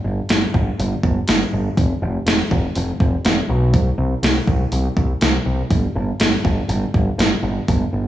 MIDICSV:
0, 0, Header, 1, 3, 480
1, 0, Start_track
1, 0, Tempo, 492207
1, 1729, Time_signature, 4, 2, 24, 8
1, 7875, End_track
2, 0, Start_track
2, 0, Title_t, "Picked electric bass"
2, 0, Program_c, 0, 34
2, 42, Note_on_c, 0, 31, 69
2, 190, Note_off_c, 0, 31, 0
2, 289, Note_on_c, 0, 31, 78
2, 435, Note_off_c, 0, 31, 0
2, 528, Note_on_c, 0, 31, 83
2, 674, Note_off_c, 0, 31, 0
2, 771, Note_on_c, 0, 31, 100
2, 916, Note_off_c, 0, 31, 0
2, 1011, Note_on_c, 0, 31, 77
2, 1156, Note_off_c, 0, 31, 0
2, 1251, Note_on_c, 0, 31, 80
2, 1396, Note_off_c, 0, 31, 0
2, 1491, Note_on_c, 0, 31, 82
2, 1636, Note_off_c, 0, 31, 0
2, 1730, Note_on_c, 0, 29, 74
2, 1875, Note_off_c, 0, 29, 0
2, 1971, Note_on_c, 0, 29, 82
2, 2116, Note_off_c, 0, 29, 0
2, 2206, Note_on_c, 0, 29, 76
2, 2352, Note_off_c, 0, 29, 0
2, 2450, Note_on_c, 0, 29, 94
2, 2595, Note_off_c, 0, 29, 0
2, 2693, Note_on_c, 0, 29, 95
2, 2837, Note_off_c, 0, 29, 0
2, 2926, Note_on_c, 0, 29, 75
2, 3072, Note_off_c, 0, 29, 0
2, 3171, Note_on_c, 0, 29, 88
2, 3316, Note_off_c, 0, 29, 0
2, 3408, Note_on_c, 0, 35, 86
2, 3645, Note_off_c, 0, 35, 0
2, 3645, Note_on_c, 0, 36, 75
2, 3792, Note_off_c, 0, 36, 0
2, 3880, Note_on_c, 0, 36, 78
2, 4028, Note_off_c, 0, 36, 0
2, 4122, Note_on_c, 0, 36, 82
2, 4270, Note_off_c, 0, 36, 0
2, 4366, Note_on_c, 0, 36, 83
2, 4513, Note_off_c, 0, 36, 0
2, 4604, Note_on_c, 0, 36, 100
2, 4752, Note_off_c, 0, 36, 0
2, 4843, Note_on_c, 0, 36, 75
2, 4991, Note_off_c, 0, 36, 0
2, 5086, Note_on_c, 0, 36, 86
2, 5233, Note_off_c, 0, 36, 0
2, 5324, Note_on_c, 0, 36, 83
2, 5472, Note_off_c, 0, 36, 0
2, 5562, Note_on_c, 0, 31, 79
2, 5710, Note_off_c, 0, 31, 0
2, 5808, Note_on_c, 0, 31, 82
2, 5954, Note_off_c, 0, 31, 0
2, 6048, Note_on_c, 0, 31, 79
2, 6195, Note_off_c, 0, 31, 0
2, 6286, Note_on_c, 0, 31, 86
2, 6433, Note_off_c, 0, 31, 0
2, 6520, Note_on_c, 0, 31, 98
2, 6669, Note_off_c, 0, 31, 0
2, 6768, Note_on_c, 0, 31, 83
2, 6915, Note_off_c, 0, 31, 0
2, 7004, Note_on_c, 0, 31, 87
2, 7152, Note_off_c, 0, 31, 0
2, 7244, Note_on_c, 0, 31, 90
2, 7392, Note_off_c, 0, 31, 0
2, 7496, Note_on_c, 0, 31, 89
2, 7641, Note_off_c, 0, 31, 0
2, 7731, Note_on_c, 0, 31, 70
2, 7875, Note_off_c, 0, 31, 0
2, 7875, End_track
3, 0, Start_track
3, 0, Title_t, "Drums"
3, 284, Note_on_c, 9, 46, 50
3, 296, Note_on_c, 9, 38, 118
3, 382, Note_off_c, 9, 46, 0
3, 394, Note_off_c, 9, 38, 0
3, 529, Note_on_c, 9, 36, 72
3, 626, Note_off_c, 9, 36, 0
3, 776, Note_on_c, 9, 46, 47
3, 874, Note_off_c, 9, 46, 0
3, 1009, Note_on_c, 9, 36, 79
3, 1106, Note_off_c, 9, 36, 0
3, 1244, Note_on_c, 9, 46, 52
3, 1256, Note_on_c, 9, 38, 101
3, 1342, Note_off_c, 9, 46, 0
3, 1353, Note_off_c, 9, 38, 0
3, 1730, Note_on_c, 9, 36, 91
3, 1733, Note_on_c, 9, 46, 45
3, 1828, Note_off_c, 9, 36, 0
3, 1831, Note_off_c, 9, 46, 0
3, 2210, Note_on_c, 9, 46, 50
3, 2222, Note_on_c, 9, 38, 108
3, 2308, Note_off_c, 9, 46, 0
3, 2319, Note_off_c, 9, 38, 0
3, 2450, Note_on_c, 9, 36, 78
3, 2547, Note_off_c, 9, 36, 0
3, 2687, Note_on_c, 9, 46, 47
3, 2784, Note_off_c, 9, 46, 0
3, 2928, Note_on_c, 9, 36, 88
3, 3025, Note_off_c, 9, 36, 0
3, 3166, Note_on_c, 9, 46, 38
3, 3178, Note_on_c, 9, 38, 97
3, 3264, Note_off_c, 9, 46, 0
3, 3276, Note_off_c, 9, 38, 0
3, 3643, Note_on_c, 9, 46, 38
3, 3645, Note_on_c, 9, 36, 97
3, 3741, Note_off_c, 9, 46, 0
3, 3743, Note_off_c, 9, 36, 0
3, 4127, Note_on_c, 9, 46, 53
3, 4138, Note_on_c, 9, 38, 106
3, 4224, Note_off_c, 9, 46, 0
3, 4236, Note_off_c, 9, 38, 0
3, 4364, Note_on_c, 9, 36, 72
3, 4461, Note_off_c, 9, 36, 0
3, 4602, Note_on_c, 9, 46, 45
3, 4699, Note_off_c, 9, 46, 0
3, 4844, Note_on_c, 9, 36, 79
3, 4941, Note_off_c, 9, 36, 0
3, 5083, Note_on_c, 9, 46, 49
3, 5094, Note_on_c, 9, 38, 97
3, 5180, Note_off_c, 9, 46, 0
3, 5192, Note_off_c, 9, 38, 0
3, 5564, Note_on_c, 9, 46, 43
3, 5565, Note_on_c, 9, 36, 89
3, 5661, Note_off_c, 9, 46, 0
3, 5663, Note_off_c, 9, 36, 0
3, 6044, Note_on_c, 9, 46, 54
3, 6056, Note_on_c, 9, 38, 121
3, 6142, Note_off_c, 9, 46, 0
3, 6153, Note_off_c, 9, 38, 0
3, 6288, Note_on_c, 9, 36, 80
3, 6386, Note_off_c, 9, 36, 0
3, 6526, Note_on_c, 9, 46, 46
3, 6623, Note_off_c, 9, 46, 0
3, 6771, Note_on_c, 9, 36, 81
3, 6868, Note_off_c, 9, 36, 0
3, 7014, Note_on_c, 9, 46, 45
3, 7025, Note_on_c, 9, 38, 93
3, 7111, Note_off_c, 9, 46, 0
3, 7123, Note_off_c, 9, 38, 0
3, 7493, Note_on_c, 9, 46, 42
3, 7494, Note_on_c, 9, 36, 81
3, 7590, Note_off_c, 9, 46, 0
3, 7591, Note_off_c, 9, 36, 0
3, 7875, End_track
0, 0, End_of_file